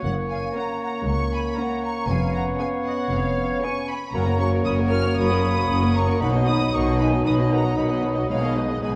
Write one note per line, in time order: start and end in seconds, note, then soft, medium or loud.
0.00 0.44 F#1 medium
0.00 0.44 F#2 medium
0.00 2.10 A#3 soft
0.00 2.07 C#5 medium
0.00 0.10 C#5 medium
0.04 2.05 A#3 medium
0.04 3.97 C#4 soft
0.04 0.12 F#5 medium
0.29 0.35 F5 medium
0.29 0.54 G#5 medium
0.54 0.93 A#3 soft
0.54 0.93 C#4 soft
0.54 0.93 A#4 soft
0.54 0.93 C#5 soft
0.54 0.61 F#5 medium
0.54 0.80 A#5 medium
0.81 1.06 F#5 medium
0.81 1.06 A#5 medium
1.06 1.47 C#2 medium
1.06 1.12 A#5 medium
1.06 1.32 C#6 medium
1.32 1.38 G#5 medium
1.32 1.58 B5 medium
1.58 1.96 A#3 soft
1.58 1.95 C#4 soft
1.58 1.95 A#4 medium
1.58 1.95 C#5 medium
1.58 1.83 F#5 medium
1.58 1.83 A#5 medium
1.83 2.08 A#5 medium
1.83 2.08 C#6 medium
2.08 2.49 F1 medium
2.08 2.49 F2 medium
2.08 3.97 B3 medium
2.08 3.97 C#5 medium
2.08 2.34 F5 medium
2.08 2.34 G#5 medium
2.34 2.59 F#5 medium
2.34 2.42 A#5 medium
2.59 2.98 B3 medium
2.59 2.98 C#4 medium
2.59 2.98 G#4 medium
2.59 2.98 C#5 medium
2.59 2.86 F5 medium
2.59 2.67 G#5 medium
2.86 2.92 D#5 medium
2.86 3.11 F#5 medium
3.11 3.52 F1 medium
3.11 3.52 F2 medium
3.11 3.62 C#5 medium
3.11 3.63 F5 medium
3.63 4.01 B3 medium
3.63 4.01 C#4 medium
3.63 4.01 G#4 medium
3.63 4.01 C#5 medium
3.63 3.86 G#5 medium
3.63 3.88 C#6 medium
3.88 3.94 G#5 medium
3.88 4.14 B5 medium
4.13 4.59 F#1 medium
4.13 4.59 F#2 medium
4.13 4.26 F#3 medium
4.13 6.23 A#3 medium
4.13 6.17 A#3 medium
4.13 6.17 C#4 medium
4.13 4.26 C#4 medium
4.13 4.25 A#4 soft
4.13 4.26 C#5 soft
4.13 6.17 C#5 medium
4.13 4.20 F#5 medium
4.13 4.39 A#5 medium
4.26 4.40 A#3 soft
4.26 4.39 F#4 soft
4.26 4.38 A#4 soft
4.39 4.53 F#3 medium
4.39 4.53 C#4 soft
4.39 4.51 A#4 soft
4.39 4.52 C#5 soft
4.39 4.46 A#5 medium
4.39 4.48 C#6 medium
4.52 4.66 A#3 soft
4.52 4.65 F#4 soft
4.52 4.63 A#4 soft
4.64 5.11 F#1 medium
4.64 5.11 F#2 medium
4.64 4.77 F#3 soft
4.64 4.77 C#4 soft
4.64 4.76 A#4 medium
4.64 4.77 C#5 medium
4.64 4.72 B5 medium
4.64 4.73 D#6 medium
4.77 4.91 A#3 soft
4.77 4.91 F#4 soft
4.77 4.89 A#4 soft
4.90 5.04 F#3 soft
4.90 5.04 C#4 soft
4.90 5.02 A#4 soft
4.90 5.04 C#5 medium
4.90 4.97 C#6 medium
4.90 5.17 F6 medium
5.03 5.18 A#3 medium
5.03 5.17 F#4 medium
5.03 5.16 A#4 soft
5.17 5.63 F#1 medium
5.17 5.63 F#2 medium
5.17 5.30 F#3 medium
5.17 5.30 C#4 soft
5.17 5.29 A#4 medium
5.17 5.29 C#5 medium
5.17 5.93 B5 medium
5.17 5.93 D#6 medium
5.31 5.44 A#3 soft
5.31 5.43 F#4 medium
5.31 5.42 A#4 soft
5.43 5.57 F#3 soft
5.43 5.57 C#4 soft
5.43 5.56 A#4 soft
5.43 5.56 C#5 soft
5.57 5.70 A#3 soft
5.57 5.69 F#4 soft
5.57 5.68 A#4 soft
5.69 6.15 F#1 medium
5.69 6.15 F#2 medium
5.69 5.82 F#3 soft
5.69 5.82 C#4 soft
5.69 5.81 A#4 soft
5.69 5.81 C#5 soft
5.82 5.96 A#3 soft
5.82 5.95 F#4 soft
5.82 5.93 A#4 soft
5.95 6.09 F#3 soft
5.95 6.09 C#4 soft
5.95 6.07 A#4 soft
5.95 6.08 C#5 soft
5.95 6.21 A#5 medium
5.95 6.21 C#6 medium
6.08 6.21 A#3 soft
6.08 6.21 F#4 soft
6.08 6.21 A#4 soft
6.20 6.67 B1 medium
6.20 6.66 B2 medium
6.20 6.34 D#3 medium
6.20 8.29 F#3 medium
6.20 7.25 F#3 medium
6.20 8.28 D#4 medium
6.20 6.33 D#4 medium
6.20 6.34 D#4 medium
6.20 6.33 B4 medium
6.20 7.23 D#5 medium
6.20 6.47 F#5 medium
6.20 6.29 B5 medium
6.33 6.47 F#3 soft
6.33 6.47 B3 soft
6.33 6.46 F#4 soft
6.33 6.46 D#5 soft
6.46 6.60 D#3 soft
6.46 6.59 D#4 soft
6.46 6.60 D#4 soft
6.46 6.59 B4 soft
6.46 6.72 B5 medium
6.46 6.72 D#6 medium
6.59 6.73 F#3 soft
6.59 6.73 B3 soft
6.59 6.72 F#4 soft
6.59 6.72 D#5 soft
6.72 7.19 B1 medium
6.72 7.19 B2 medium
6.72 6.85 D#3 soft
6.72 6.84 D#4 soft
6.72 6.85 D#4 soft
6.72 6.85 B4 medium
6.72 6.78 A#5 medium
6.72 6.99 C#6 medium
6.85 7.00 F#3 soft
6.85 7.00 B3 soft
6.85 6.98 F#4 soft
6.85 6.98 D#5 soft
6.98 7.12 D#3 soft
6.98 7.11 D#4 medium
6.98 7.12 D#4 soft
6.98 7.11 B4 soft
6.98 7.24 G#5 medium
6.98 7.07 B5 medium
7.12 7.26 F#3 soft
7.12 7.26 B3 soft
7.12 7.25 F#4 soft
7.12 7.25 D#5 soft
7.25 7.71 B1 soft
7.25 7.71 B2 medium
7.25 7.38 D#3 soft
7.25 7.77 F#3 medium
7.25 7.37 D#4 medium
7.25 7.38 D#4 soft
7.25 7.37 B4 medium
7.25 7.76 D#5 medium
7.25 7.51 B5 medium
7.25 7.34 D#6 medium
7.37 7.52 F#3 soft
7.37 7.52 B3 soft
7.37 7.51 F#4 soft
7.37 7.51 D#5 soft
7.51 7.64 D#3 soft
7.51 7.64 D#4 soft
7.51 7.64 B4 soft
7.51 7.76 F#5 medium
7.51 7.77 A#5 medium
7.64 7.78 F#3 soft
7.64 7.78 B3 soft
7.64 7.77 F#4 soft
7.64 7.77 D#5 soft
7.77 8.23 B1 medium
7.77 8.23 B2 medium
7.77 7.89 D#3 soft
7.77 8.31 F#3 medium
7.77 7.89 D#4 soft
7.77 7.89 B4 soft
7.77 8.28 D#5 medium
7.77 8.03 F#5 soft
7.77 8.04 B5 medium
7.90 8.03 F#3 soft
7.90 8.03 B3 soft
7.90 8.03 F#4 soft
7.90 8.03 D#5 soft
8.03 8.17 D#3 soft
8.03 8.16 D#4 soft
8.03 8.17 D#4 soft
8.03 8.16 B4 soft
8.16 8.29 F#3 soft
8.16 8.30 B3 soft
8.16 8.29 F#4 soft
8.16 8.29 D#5 soft
8.29 8.76 B1 soft
8.29 8.76 B2 medium
8.29 8.78 G#3 soft
8.29 8.42 G#3 medium
8.29 8.82 G#3 soft
8.29 8.79 D#4 soft
8.29 8.42 D#4 medium
8.29 8.41 B4 soft
8.29 8.54 C#5 medium
8.29 8.82 D#5 soft
8.29 8.54 F5 medium
8.42 8.56 D#3 soft
8.42 8.56 B3 soft
8.42 8.56 G#4 soft
8.42 8.56 D#5 soft
8.55 8.69 G#3 soft
8.55 8.69 D#4 soft
8.55 8.69 B4 soft
8.55 8.83 B4 soft
8.55 8.83 D#5 medium
8.69 8.83 D#3 soft
8.69 8.83 B3 soft
8.69 8.82 G#4 soft
8.69 8.82 D#5 soft
8.81 8.96 B1 medium
8.81 8.96 B2 medium
8.81 8.96 G#3 soft
8.81 8.96 G#3 medium
8.81 8.95 G#3 soft
8.81 8.96 D#4 soft
8.81 8.95 D#4 soft
8.81 8.94 B4 soft
8.81 8.96 D#5 soft
8.81 8.91 G#5 medium